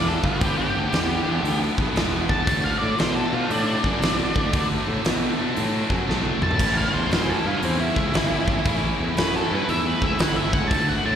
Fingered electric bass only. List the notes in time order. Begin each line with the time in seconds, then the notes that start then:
Already playing: E1
0.24 G1
0.41 G1
0.75 D2
0.93 E2
1.25 E2
1.43 D2
1.78 B1
1.96 E1
2.29 E2
2.48 D2
2.82 A2
3.00 B2
3.33 B2
3.50 A2
3.84 F#2
4.00 B1
4.36 D2
4.54 D2
4.87 A2
5.06 B2
5.38 B2
5.57 A2
5.90 F#2
6.09 B1
6.41 B1
6.59 A1
6.94 E2
7.10 F#2
7.45 G2
7.63 E2
7.96 C#2
8.14 G1
8.47 A1
8.66 A1
8.99 E2
9.17 F#2
9.51 G2
9.69 E2
10.02 C#2
10.20 G1
10.53 C#2
10.71 D2
11.05 A2